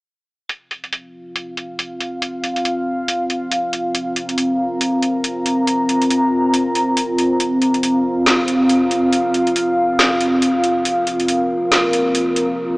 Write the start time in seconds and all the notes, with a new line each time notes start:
0.49 C4 F4 F5, closed hi-hat
0.71 closed hi-hat
0.84 closed hi-hat
0.93 closed hi-hat
1.36 closed hi-hat
1.57 closed hi-hat
1.79 closed hi-hat
2.00 closed hi-hat
2.22 closed hi-hat
2.44 closed hi-hat
2.56 closed hi-hat
2.65 closed hi-hat
3.08 closed hi-hat
3.30 closed hi-hat
3.52 closed hi-hat
3.73 closed hi-hat
3.95 A#5, closed hi-hat
4.16 closed hi-hat
4.29 closed hi-hat
4.38 closed hi-hat
4.81 closed hi-hat
5.02 closed hi-hat
5.24 closed hi-hat
5.46 closed hi-hat
5.67 closed hi-hat
5.89 closed hi-hat
6.02 closed hi-hat
6.10 closed hi-hat
6.54 closed hi-hat
6.75 closed hi-hat
6.97 closed hi-hat
7.18 closed hi-hat
7.40 F5, closed hi-hat
7.62 closed hi-hat
7.74 closed hi-hat
7.83 closed hi-hat
8.26 snare, closed hi-hat
8.48 closed hi-hat
8.69 closed hi-hat
8.91 closed hi-hat
9.13 closed hi-hat
9.34 closed hi-hat
9.47 closed hi-hat
9.56 closed hi-hat
9.99 snare, closed hi-hat
10.21 closed hi-hat
10.42 closed hi-hat
10.64 closed hi-hat
10.85 A#4, closed hi-hat
11.07 closed hi-hat
11.20 closed hi-hat
11.28 closed hi-hat
11.72 snare, closed hi-hat
11.93 closed hi-hat
12.15 closed hi-hat
12.36 closed hi-hat